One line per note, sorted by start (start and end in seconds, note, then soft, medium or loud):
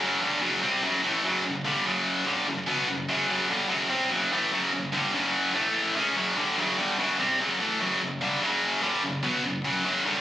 0.00 0.20 F#2 loud
0.00 0.20 C#3 loud
0.00 0.20 F#3 loud
0.21 0.40 G2 medium
0.21 0.40 D3 medium
0.21 0.41 G3 loud
0.41 0.61 F#2 medium
0.41 0.61 C#3 loud
0.41 0.61 F#3 loud
0.62 0.82 C3 medium
0.62 0.82 G3 loud
0.62 0.82 C4 loud
0.82 1.02 F#2 loud
0.82 1.02 C#3 loud
0.82 1.02 F#3 loud
1.03 1.23 A2 medium
1.03 1.23 E3 medium
1.03 1.23 A3 loud
1.24 1.43 F#2 loud
1.24 1.43 C#3 medium
1.24 1.44 F#3 loud
1.44 1.60 F#2 medium
1.44 1.61 C#3 medium
1.65 1.84 G2 loud
1.65 1.85 D3 loud
1.65 1.85 G3 loud
1.85 2.25 F#2 medium
1.85 2.26 C#3 loud
1.85 2.26 F#3 loud
2.26 2.46 G2 medium
2.26 2.46 D3 loud
2.26 2.46 G3 loud
2.47 2.63 F#2 medium
2.47 2.63 C#3 medium
2.67 2.87 B2 medium
2.67 2.87 F#3 medium
2.67 2.88 B3 loud
2.88 3.04 F#2 medium
2.88 3.05 C#3 medium
3.09 3.28 F#2 medium
3.09 3.28 C#3 loud
3.09 3.29 F#3 loud
3.29 3.49 F#2 loud
3.29 3.49 C#3 medium
3.29 3.49 F#3 loud
3.49 3.68 G2 medium
3.49 3.69 D3 loud
3.49 3.69 G3 loud
3.69 3.89 F#2 medium
3.69 3.89 C#3 loud
3.69 3.90 F#3 loud
3.89 4.10 C3 medium
3.89 4.10 G3 medium
3.89 4.10 C4 loud
4.11 4.31 F#2 loud
4.11 4.31 C#3 loud
4.11 4.31 F#3 loud
4.32 4.52 A2 medium
4.32 4.52 E3 medium
4.32 4.52 A3 loud
4.52 4.71 F#2 medium
4.52 4.71 C#3 loud
4.52 4.72 F#3 loud
4.72 4.89 F#2 medium
4.72 4.89 C#3 medium
4.92 5.13 G2 loud
4.92 5.13 D3 loud
4.92 5.13 G3 loud
5.14 5.54 F#2 medium
5.14 5.54 C#3 loud
5.14 5.55 F#3 loud
5.54 5.95 A2 medium
5.54 5.95 E3 loud
5.54 5.95 A3 loud
5.96 6.15 C#3 medium
5.96 6.16 G#3 medium
5.96 6.16 C#4 loud
6.16 6.36 F#2 medium
6.16 6.36 C#3 medium
6.16 6.36 F#3 loud
6.37 6.57 G2 medium
6.37 6.57 D3 loud
6.37 6.57 G3 loud
6.58 6.77 F#2 loud
6.58 6.78 C#3 loud
6.58 6.78 F#3 loud
6.77 6.98 G2 medium
6.77 6.98 D3 medium
6.77 6.98 G3 medium
6.98 7.18 F#2 medium
6.98 7.18 C#3 loud
6.98 7.19 F#3 loud
7.19 7.39 C3 loud
7.19 7.39 G3 loud
7.19 7.39 C4 loud
7.39 7.59 F#2 loud
7.39 7.59 C#3 loud
7.39 7.60 F#3 loud
7.60 7.80 A2 medium
7.60 7.80 E3 loud
7.60 7.80 A3 medium
7.80 8.00 F#2 medium
7.80 8.00 C#3 loud
7.80 8.01 F#3 loud
8.01 8.18 F#2 medium
8.01 8.18 C#3 medium
8.21 8.41 G2 medium
8.21 8.42 D3 loud
8.21 8.42 G3 loud
8.41 8.81 F#2 medium
8.41 8.82 C#3 medium
8.41 8.82 F#3 loud
8.82 9.02 G2 medium
8.82 9.03 D3 loud
8.82 9.03 G3 loud
9.03 9.20 F#2 medium
9.03 9.20 C#3 medium
9.23 9.43 B2 loud
9.23 9.44 F#3 loud
9.23 9.44 B3 loud
9.44 9.61 F#2 medium
9.44 9.61 C#3 medium
9.64 9.83 F#2 medium
9.64 9.84 C#3 loud
9.64 9.84 F#3 loud
9.85 10.05 F#2 loud
9.85 10.05 C#3 loud
9.85 10.05 F#3 loud
10.05 10.21 G2 loud
10.05 10.21 D3 loud
10.05 10.21 G3 loud